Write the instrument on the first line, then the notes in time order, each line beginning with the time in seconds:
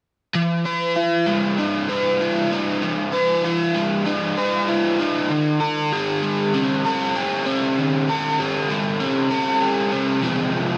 overdriven electric guitar
0.35 F3
0.65 C5
0.96 F4
1.26 G#3
1.58 D#4
1.89 C5
2.20 F4
2.51 D#4
2.82 F3
3.13 C5
3.44 F4
3.75 G#3
4.06 D#4
4.37 C5
4.68 F4
4.99 D#4
5.29 D#3
5.60 A#4
5.92 G#4
6.23 G#3
6.54 C#4
6.85 A#4
7.16 G#4
7.46 C#4
7.78 D#3
8.09 A#4
8.40 G#4
8.71 G#3
9.00 C#4
9.31 A#4
9.61 G#4
9.92 C#4
10.22 F2 C3 F3 G#3 C4